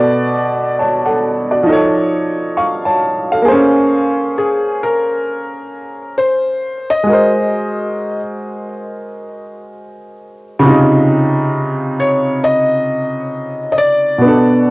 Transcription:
Already playing: B2 B3 A4 D5
0.79 C#5 A5
1.05 A4 F#5
1.51 F#4 D5
1.63 F3 D#4
1.69 A4 C#5
2.57 F5 C#6
2.85 C#5 A5
3.32 A4 F5
3.42 A#3 G#4
3.48 C#4 C5
4.38 G#4
4.83 A#4
6.18 C5
6.90 D#5
7.03 G#3 F#4
7.10 A#4 C5
10.59 C3 C#3
10.66 D#4 F4
12.00 C#5
12.44 D#5
13.72 D#5
13.78 D5
14.18 B2 B3
14.24 D4 A4

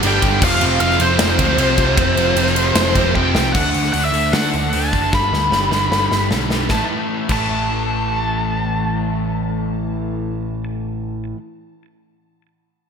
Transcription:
Already playing: G3 D4 A4
0.02 G1 G2 D3 G3 B3 D4 G4, ride
0.07 G5
0.22 G1 G2 D3 G3, kick, ride
0.42 F1 F2 C3 F3 A3 C4 F4 G4 F5, kick, crash
0.61 F1 F2 C3 F3, ride
0.80 F1 F2 C3 F3 F4 F5, ride
0.91 snare
1.00 F1 F2 C3 F3 C4 C5, ride
1.19 F1 F2 C3 F3, snare, ride
1.37 D2 F2 C3 F3 A3 C4, kick, ride
1.56 C2 F2 C3 F3 A3, ride
1.62 C4
1.76 F2 C3 F3, kick, ride
1.96 F1 F2 C3 F3 A3, kick, ride
2.01 C4
2.16 F1 F2 C3 F3, ride
2.35 F1 F2 C3 F3, ride
2.47 snare
2.56 F2 C3 F3, ride
2.74 F1 F2 C3 F3, snare, ride
2.94 F1 F2 C3 F3 A3 C4, kick, ride
3.15 F1 F2 C3 F3 A3 C4 G5, kick
3.35 C2 F2 C3 F3, snare
3.53 D2 D3 A3 D4 F#5, kick, crash
3.74 D2, open hi-hat
3.83 snare
3.93 D2 D3 A3 D4 F#5, open hi-hat
4.05 E5
4.13 D2 D3 A3 D4, open hi-hat
4.33 D3 A3 D4 F#5, snare, open hi-hat
4.53 D2, open hi-hat
4.73 D2 D3 A3 D4 A5, open hi-hat
4.91 F#1 D3 A3 D4, kick, open hi-hat
5.11 G1 G2 D3 G3, kick, snare
5.15 B5
5.32 D2, snare
5.50 G1 G2 D3 G3, snare
5.70 G1 G2 D3 G3, snare
5.90 G1 G2 D3 G3, snare
6.11 G1, snare
6.31 B1 G2 D3 G3, snare
6.50 G2 D3 G3, snare
6.69 A1 A2 E3 A5, kick, snare
6.74 A3
7.29 A1 A2 E3 A3 A5, kick, crash

